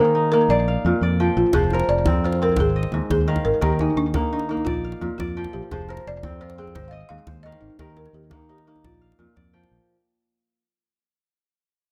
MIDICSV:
0, 0, Header, 1, 5, 480
1, 0, Start_track
1, 0, Tempo, 348028
1, 2124, Time_signature, 12, 3, 24, 8
1, 16426, End_track
2, 0, Start_track
2, 0, Title_t, "Balafon"
2, 0, Program_c, 0, 12
2, 0, Note_on_c, 0, 70, 97
2, 397, Note_off_c, 0, 70, 0
2, 438, Note_on_c, 0, 70, 89
2, 548, Note_off_c, 0, 70, 0
2, 689, Note_on_c, 0, 74, 91
2, 1830, Note_off_c, 0, 74, 0
2, 1888, Note_on_c, 0, 65, 80
2, 2109, Note_off_c, 0, 65, 0
2, 2123, Note_on_c, 0, 68, 91
2, 2345, Note_off_c, 0, 68, 0
2, 2406, Note_on_c, 0, 72, 88
2, 2605, Note_on_c, 0, 74, 98
2, 2630, Note_off_c, 0, 72, 0
2, 3096, Note_off_c, 0, 74, 0
2, 3110, Note_on_c, 0, 72, 80
2, 3341, Note_off_c, 0, 72, 0
2, 3346, Note_on_c, 0, 70, 87
2, 3556, Note_off_c, 0, 70, 0
2, 3588, Note_on_c, 0, 68, 90
2, 4278, Note_off_c, 0, 68, 0
2, 4295, Note_on_c, 0, 68, 80
2, 4756, Note_on_c, 0, 70, 83
2, 4778, Note_off_c, 0, 68, 0
2, 5002, Note_off_c, 0, 70, 0
2, 5008, Note_on_c, 0, 67, 87
2, 5247, Note_off_c, 0, 67, 0
2, 5252, Note_on_c, 0, 63, 80
2, 5466, Note_off_c, 0, 63, 0
2, 5477, Note_on_c, 0, 62, 88
2, 5951, Note_off_c, 0, 62, 0
2, 5968, Note_on_c, 0, 62, 78
2, 6072, Note_off_c, 0, 62, 0
2, 6195, Note_on_c, 0, 63, 76
2, 6410, Note_on_c, 0, 65, 86
2, 6440, Note_off_c, 0, 63, 0
2, 7129, Note_off_c, 0, 65, 0
2, 7145, Note_on_c, 0, 65, 81
2, 7630, Note_on_c, 0, 67, 81
2, 7641, Note_off_c, 0, 65, 0
2, 7876, Note_off_c, 0, 67, 0
2, 7884, Note_on_c, 0, 68, 86
2, 8123, Note_off_c, 0, 68, 0
2, 8142, Note_on_c, 0, 72, 87
2, 8242, Note_off_c, 0, 72, 0
2, 8379, Note_on_c, 0, 74, 96
2, 8842, Note_on_c, 0, 72, 82
2, 8857, Note_off_c, 0, 74, 0
2, 9059, Note_off_c, 0, 72, 0
2, 9083, Note_on_c, 0, 68, 78
2, 9313, Note_on_c, 0, 72, 84
2, 9322, Note_off_c, 0, 68, 0
2, 9478, Note_off_c, 0, 72, 0
2, 9489, Note_on_c, 0, 77, 64
2, 9530, Note_on_c, 0, 75, 82
2, 9548, Note_off_c, 0, 77, 0
2, 9776, Note_on_c, 0, 77, 96
2, 9786, Note_off_c, 0, 75, 0
2, 10248, Note_on_c, 0, 75, 90
2, 10277, Note_off_c, 0, 77, 0
2, 10491, Note_on_c, 0, 63, 72
2, 10506, Note_off_c, 0, 75, 0
2, 10747, Note_off_c, 0, 63, 0
2, 10754, Note_on_c, 0, 67, 82
2, 10861, Note_off_c, 0, 67, 0
2, 10991, Note_on_c, 0, 70, 82
2, 11213, Note_off_c, 0, 70, 0
2, 11231, Note_on_c, 0, 67, 77
2, 11478, Note_off_c, 0, 67, 0
2, 11488, Note_on_c, 0, 63, 78
2, 11717, Note_on_c, 0, 67, 77
2, 11727, Note_off_c, 0, 63, 0
2, 11961, Note_off_c, 0, 67, 0
2, 11962, Note_on_c, 0, 63, 72
2, 12204, Note_off_c, 0, 63, 0
2, 12204, Note_on_c, 0, 65, 67
2, 13105, Note_off_c, 0, 65, 0
2, 16426, End_track
3, 0, Start_track
3, 0, Title_t, "Kora"
3, 0, Program_c, 1, 46
3, 0, Note_on_c, 1, 51, 75
3, 0, Note_on_c, 1, 58, 76
3, 0, Note_on_c, 1, 68, 67
3, 0, Note_on_c, 1, 70, 70
3, 0, Note_on_c, 1, 72, 71
3, 0, Note_on_c, 1, 77, 66
3, 157, Note_off_c, 1, 77, 0
3, 185, Note_off_c, 1, 72, 0
3, 205, Note_on_c, 1, 63, 65
3, 454, Note_off_c, 1, 58, 0
3, 459, Note_on_c, 1, 58, 80
3, 701, Note_on_c, 1, 74, 69
3, 756, Note_off_c, 1, 51, 0
3, 937, Note_on_c, 1, 77, 68
3, 1010, Note_off_c, 1, 70, 0
3, 1183, Note_on_c, 1, 46, 72
3, 1372, Note_off_c, 1, 68, 0
3, 1412, Note_off_c, 1, 74, 0
3, 1417, Note_on_c, 1, 74, 67
3, 1500, Note_off_c, 1, 63, 0
3, 1655, Note_on_c, 1, 53, 77
3, 1656, Note_on_c, 1, 79, 67
3, 2113, Note_off_c, 1, 53, 0
3, 2129, Note_on_c, 1, 53, 81
3, 2130, Note_on_c, 1, 72, 69
3, 2192, Note_off_c, 1, 46, 0
3, 2314, Note_off_c, 1, 77, 0
3, 2389, Note_on_c, 1, 70, 67
3, 2855, Note_on_c, 1, 60, 76
3, 2941, Note_off_c, 1, 79, 0
3, 2945, Note_off_c, 1, 74, 0
3, 3092, Note_on_c, 1, 65, 65
3, 3120, Note_off_c, 1, 58, 0
3, 3327, Note_off_c, 1, 60, 0
3, 3333, Note_on_c, 1, 60, 74
3, 3562, Note_off_c, 1, 72, 0
3, 3567, Note_on_c, 1, 72, 65
3, 3628, Note_off_c, 1, 53, 0
3, 3805, Note_on_c, 1, 75, 64
3, 4052, Note_on_c, 1, 44, 70
3, 4144, Note_off_c, 1, 70, 0
3, 4278, Note_off_c, 1, 72, 0
3, 4284, Note_on_c, 1, 72, 67
3, 4519, Note_on_c, 1, 51, 79
3, 4523, Note_on_c, 1, 77, 63
3, 4968, Note_off_c, 1, 51, 0
3, 4984, Note_on_c, 1, 51, 82
3, 4988, Note_on_c, 1, 70, 66
3, 5063, Note_off_c, 1, 44, 0
3, 5180, Note_off_c, 1, 65, 0
3, 5246, Note_on_c, 1, 68, 62
3, 5281, Note_off_c, 1, 75, 0
3, 5725, Note_on_c, 1, 58, 77
3, 5815, Note_off_c, 1, 60, 0
3, 5901, Note_off_c, 1, 77, 0
3, 5922, Note_off_c, 1, 72, 0
3, 5967, Note_on_c, 1, 63, 69
3, 6211, Note_off_c, 1, 58, 0
3, 6217, Note_on_c, 1, 58, 73
3, 6446, Note_on_c, 1, 74, 69
3, 6500, Note_off_c, 1, 51, 0
3, 6682, Note_on_c, 1, 77, 68
3, 6743, Note_off_c, 1, 70, 0
3, 6914, Note_on_c, 1, 46, 74
3, 7127, Note_off_c, 1, 68, 0
3, 7161, Note_off_c, 1, 74, 0
3, 7166, Note_on_c, 1, 74, 70
3, 7249, Note_off_c, 1, 63, 0
3, 7403, Note_on_c, 1, 53, 78
3, 7405, Note_on_c, 1, 79, 67
3, 7877, Note_off_c, 1, 53, 0
3, 7893, Note_on_c, 1, 53, 81
3, 7893, Note_on_c, 1, 72, 71
3, 7938, Note_off_c, 1, 46, 0
3, 8059, Note_off_c, 1, 77, 0
3, 8123, Note_on_c, 1, 70, 66
3, 8612, Note_on_c, 1, 60, 77
3, 8690, Note_off_c, 1, 79, 0
3, 8694, Note_off_c, 1, 74, 0
3, 8836, Note_on_c, 1, 65, 69
3, 8877, Note_off_c, 1, 58, 0
3, 9073, Note_off_c, 1, 60, 0
3, 9078, Note_on_c, 1, 60, 79
3, 9302, Note_off_c, 1, 72, 0
3, 9307, Note_on_c, 1, 72, 68
3, 9377, Note_off_c, 1, 53, 0
3, 9550, Note_on_c, 1, 75, 72
3, 9792, Note_on_c, 1, 44, 71
3, 9878, Note_off_c, 1, 70, 0
3, 10032, Note_off_c, 1, 72, 0
3, 10038, Note_on_c, 1, 72, 71
3, 10284, Note_on_c, 1, 51, 79
3, 10288, Note_on_c, 1, 77, 64
3, 10739, Note_off_c, 1, 51, 0
3, 10754, Note_on_c, 1, 51, 83
3, 10757, Note_on_c, 1, 70, 70
3, 10817, Note_off_c, 1, 44, 0
3, 10923, Note_off_c, 1, 65, 0
3, 11026, Note_off_c, 1, 75, 0
3, 11462, Note_on_c, 1, 58, 80
3, 11561, Note_off_c, 1, 60, 0
3, 11665, Note_off_c, 1, 77, 0
3, 11675, Note_off_c, 1, 72, 0
3, 11711, Note_on_c, 1, 63, 68
3, 11961, Note_off_c, 1, 58, 0
3, 11967, Note_on_c, 1, 58, 81
3, 12196, Note_on_c, 1, 74, 65
3, 12260, Note_off_c, 1, 51, 0
3, 12433, Note_on_c, 1, 77, 65
3, 12512, Note_off_c, 1, 70, 0
3, 12672, Note_on_c, 1, 46, 72
3, 12908, Note_off_c, 1, 74, 0
3, 12913, Note_on_c, 1, 74, 66
3, 12996, Note_off_c, 1, 63, 0
3, 13151, Note_on_c, 1, 79, 65
3, 13153, Note_on_c, 1, 53, 77
3, 13705, Note_off_c, 1, 46, 0
3, 13705, Note_off_c, 1, 53, 0
3, 13810, Note_off_c, 1, 77, 0
3, 14436, Note_off_c, 1, 79, 0
3, 14441, Note_off_c, 1, 74, 0
3, 14628, Note_off_c, 1, 58, 0
3, 16426, End_track
4, 0, Start_track
4, 0, Title_t, "Fingered electric bass"
4, 0, Program_c, 2, 33
4, 0, Note_on_c, 2, 51, 92
4, 672, Note_on_c, 2, 34, 86
4, 693, Note_off_c, 2, 51, 0
4, 1046, Note_off_c, 2, 34, 0
4, 1167, Note_on_c, 2, 41, 83
4, 1259, Note_off_c, 2, 41, 0
4, 1397, Note_on_c, 2, 41, 84
4, 1768, Note_off_c, 2, 41, 0
4, 1883, Note_on_c, 2, 34, 86
4, 1976, Note_off_c, 2, 34, 0
4, 2121, Note_on_c, 2, 29, 94
4, 2490, Note_off_c, 2, 29, 0
4, 2596, Note_on_c, 2, 29, 82
4, 2826, Note_on_c, 2, 41, 94
4, 2847, Note_off_c, 2, 29, 0
4, 3550, Note_on_c, 2, 32, 83
4, 3570, Note_off_c, 2, 41, 0
4, 3921, Note_off_c, 2, 32, 0
4, 4033, Note_on_c, 2, 39, 85
4, 4127, Note_off_c, 2, 39, 0
4, 4276, Note_on_c, 2, 39, 89
4, 4644, Note_off_c, 2, 39, 0
4, 4762, Note_on_c, 2, 32, 84
4, 4851, Note_off_c, 2, 32, 0
4, 4998, Note_on_c, 2, 39, 90
4, 5365, Note_off_c, 2, 39, 0
4, 5466, Note_on_c, 2, 39, 87
4, 5715, Note_on_c, 2, 51, 91
4, 5735, Note_off_c, 2, 39, 0
4, 6436, Note_on_c, 2, 34, 87
4, 6457, Note_off_c, 2, 51, 0
4, 6802, Note_off_c, 2, 34, 0
4, 6914, Note_on_c, 2, 41, 81
4, 7005, Note_off_c, 2, 41, 0
4, 7159, Note_on_c, 2, 41, 93
4, 7524, Note_off_c, 2, 41, 0
4, 7646, Note_on_c, 2, 34, 87
4, 7732, Note_off_c, 2, 34, 0
4, 7884, Note_on_c, 2, 29, 94
4, 8247, Note_off_c, 2, 29, 0
4, 8372, Note_on_c, 2, 29, 85
4, 8591, Note_on_c, 2, 41, 96
4, 8612, Note_off_c, 2, 29, 0
4, 9317, Note_on_c, 2, 32, 93
4, 9338, Note_off_c, 2, 41, 0
4, 9683, Note_off_c, 2, 32, 0
4, 9799, Note_on_c, 2, 39, 85
4, 9887, Note_off_c, 2, 39, 0
4, 10027, Note_on_c, 2, 39, 89
4, 10396, Note_off_c, 2, 39, 0
4, 10509, Note_on_c, 2, 32, 81
4, 10601, Note_off_c, 2, 32, 0
4, 10746, Note_on_c, 2, 39, 92
4, 11116, Note_off_c, 2, 39, 0
4, 11216, Note_on_c, 2, 39, 85
4, 11445, Note_on_c, 2, 51, 94
4, 11466, Note_off_c, 2, 39, 0
4, 12192, Note_on_c, 2, 34, 86
4, 12213, Note_off_c, 2, 51, 0
4, 12562, Note_off_c, 2, 34, 0
4, 12671, Note_on_c, 2, 41, 82
4, 12764, Note_off_c, 2, 41, 0
4, 12922, Note_on_c, 2, 41, 90
4, 13289, Note_off_c, 2, 41, 0
4, 13398, Note_on_c, 2, 34, 82
4, 13489, Note_off_c, 2, 34, 0
4, 16426, End_track
5, 0, Start_track
5, 0, Title_t, "Djembe"
5, 2111, Note_on_c, 9, 62, 65
5, 2111, Note_on_c, 9, 64, 69
5, 2249, Note_off_c, 9, 62, 0
5, 2249, Note_off_c, 9, 64, 0
5, 2351, Note_on_c, 9, 63, 66
5, 2476, Note_on_c, 9, 62, 53
5, 2489, Note_off_c, 9, 63, 0
5, 2614, Note_off_c, 9, 62, 0
5, 2836, Note_on_c, 9, 62, 69
5, 2836, Note_on_c, 9, 63, 64
5, 2836, Note_on_c, 9, 64, 69
5, 2974, Note_off_c, 9, 62, 0
5, 2974, Note_off_c, 9, 63, 0
5, 2974, Note_off_c, 9, 64, 0
5, 3206, Note_on_c, 9, 62, 55
5, 3344, Note_off_c, 9, 62, 0
5, 3437, Note_on_c, 9, 63, 55
5, 3537, Note_on_c, 9, 62, 69
5, 3537, Note_on_c, 9, 64, 72
5, 3575, Note_off_c, 9, 63, 0
5, 3675, Note_off_c, 9, 62, 0
5, 3675, Note_off_c, 9, 64, 0
5, 3900, Note_on_c, 9, 62, 52
5, 4025, Note_on_c, 9, 63, 64
5, 4038, Note_off_c, 9, 62, 0
5, 4157, Note_on_c, 9, 62, 22
5, 4163, Note_off_c, 9, 63, 0
5, 4284, Note_off_c, 9, 62, 0
5, 4284, Note_on_c, 9, 62, 62
5, 4284, Note_on_c, 9, 64, 65
5, 4421, Note_off_c, 9, 62, 0
5, 4421, Note_off_c, 9, 64, 0
5, 4631, Note_on_c, 9, 62, 51
5, 4631, Note_on_c, 9, 63, 54
5, 4769, Note_off_c, 9, 62, 0
5, 4769, Note_off_c, 9, 63, 0
5, 4876, Note_on_c, 9, 62, 22
5, 4995, Note_off_c, 9, 62, 0
5, 4995, Note_on_c, 9, 62, 67
5, 4995, Note_on_c, 9, 64, 67
5, 5133, Note_off_c, 9, 62, 0
5, 5133, Note_off_c, 9, 64, 0
5, 5229, Note_on_c, 9, 63, 66
5, 5367, Note_off_c, 9, 63, 0
5, 5710, Note_on_c, 9, 62, 66
5, 5710, Note_on_c, 9, 63, 68
5, 5710, Note_on_c, 9, 64, 66
5, 5848, Note_off_c, 9, 62, 0
5, 5848, Note_off_c, 9, 63, 0
5, 5848, Note_off_c, 9, 64, 0
5, 6059, Note_on_c, 9, 62, 52
5, 6197, Note_off_c, 9, 62, 0
5, 6306, Note_on_c, 9, 63, 55
5, 6433, Note_on_c, 9, 62, 66
5, 6433, Note_on_c, 9, 64, 72
5, 6444, Note_off_c, 9, 63, 0
5, 6571, Note_off_c, 9, 62, 0
5, 6571, Note_off_c, 9, 64, 0
5, 6788, Note_on_c, 9, 62, 49
5, 6926, Note_off_c, 9, 62, 0
5, 6927, Note_on_c, 9, 63, 62
5, 7041, Note_on_c, 9, 62, 20
5, 7065, Note_off_c, 9, 63, 0
5, 7168, Note_off_c, 9, 62, 0
5, 7168, Note_on_c, 9, 62, 66
5, 7168, Note_on_c, 9, 64, 65
5, 7306, Note_off_c, 9, 62, 0
5, 7306, Note_off_c, 9, 64, 0
5, 7509, Note_on_c, 9, 62, 47
5, 7509, Note_on_c, 9, 63, 48
5, 7647, Note_off_c, 9, 62, 0
5, 7647, Note_off_c, 9, 63, 0
5, 7769, Note_on_c, 9, 62, 19
5, 7881, Note_off_c, 9, 62, 0
5, 7881, Note_on_c, 9, 62, 59
5, 7881, Note_on_c, 9, 64, 64
5, 8019, Note_off_c, 9, 62, 0
5, 8019, Note_off_c, 9, 64, 0
5, 8117, Note_on_c, 9, 63, 62
5, 8235, Note_on_c, 9, 62, 51
5, 8255, Note_off_c, 9, 63, 0
5, 8372, Note_off_c, 9, 62, 0
5, 8597, Note_on_c, 9, 62, 66
5, 8597, Note_on_c, 9, 63, 70
5, 8597, Note_on_c, 9, 64, 66
5, 8734, Note_off_c, 9, 62, 0
5, 8734, Note_off_c, 9, 63, 0
5, 8734, Note_off_c, 9, 64, 0
5, 8960, Note_on_c, 9, 62, 49
5, 9098, Note_off_c, 9, 62, 0
5, 9205, Note_on_c, 9, 63, 52
5, 9317, Note_on_c, 9, 62, 70
5, 9317, Note_on_c, 9, 64, 68
5, 9343, Note_off_c, 9, 63, 0
5, 9455, Note_off_c, 9, 62, 0
5, 9455, Note_off_c, 9, 64, 0
5, 9925, Note_on_c, 9, 62, 21
5, 10025, Note_off_c, 9, 62, 0
5, 10025, Note_on_c, 9, 62, 63
5, 10025, Note_on_c, 9, 64, 65
5, 10163, Note_off_c, 9, 62, 0
5, 10163, Note_off_c, 9, 64, 0
5, 10376, Note_on_c, 9, 62, 48
5, 10376, Note_on_c, 9, 63, 49
5, 10514, Note_off_c, 9, 62, 0
5, 10514, Note_off_c, 9, 63, 0
5, 10618, Note_on_c, 9, 62, 21
5, 10745, Note_off_c, 9, 62, 0
5, 10745, Note_on_c, 9, 62, 66
5, 10745, Note_on_c, 9, 64, 68
5, 10883, Note_off_c, 9, 62, 0
5, 10883, Note_off_c, 9, 64, 0
5, 10986, Note_on_c, 9, 63, 66
5, 11109, Note_on_c, 9, 62, 50
5, 11124, Note_off_c, 9, 63, 0
5, 11247, Note_off_c, 9, 62, 0
5, 11345, Note_on_c, 9, 62, 19
5, 11461, Note_off_c, 9, 62, 0
5, 11461, Note_on_c, 9, 62, 67
5, 11461, Note_on_c, 9, 63, 65
5, 11461, Note_on_c, 9, 64, 65
5, 11599, Note_off_c, 9, 62, 0
5, 11599, Note_off_c, 9, 63, 0
5, 11599, Note_off_c, 9, 64, 0
5, 11837, Note_on_c, 9, 62, 50
5, 11974, Note_off_c, 9, 62, 0
5, 12078, Note_on_c, 9, 62, 22
5, 12078, Note_on_c, 9, 63, 54
5, 12199, Note_off_c, 9, 62, 0
5, 12199, Note_on_c, 9, 62, 67
5, 12199, Note_on_c, 9, 64, 67
5, 12216, Note_off_c, 9, 63, 0
5, 12336, Note_off_c, 9, 62, 0
5, 12336, Note_on_c, 9, 62, 18
5, 12337, Note_off_c, 9, 64, 0
5, 12474, Note_off_c, 9, 62, 0
5, 12577, Note_on_c, 9, 62, 47
5, 12689, Note_off_c, 9, 62, 0
5, 12689, Note_on_c, 9, 62, 19
5, 12689, Note_on_c, 9, 63, 61
5, 12827, Note_off_c, 9, 62, 0
5, 12827, Note_off_c, 9, 63, 0
5, 12920, Note_on_c, 9, 62, 61
5, 12920, Note_on_c, 9, 64, 57
5, 13058, Note_off_c, 9, 62, 0
5, 13058, Note_off_c, 9, 64, 0
5, 13289, Note_on_c, 9, 62, 48
5, 13289, Note_on_c, 9, 63, 46
5, 13427, Note_off_c, 9, 62, 0
5, 13427, Note_off_c, 9, 63, 0
5, 16426, End_track
0, 0, End_of_file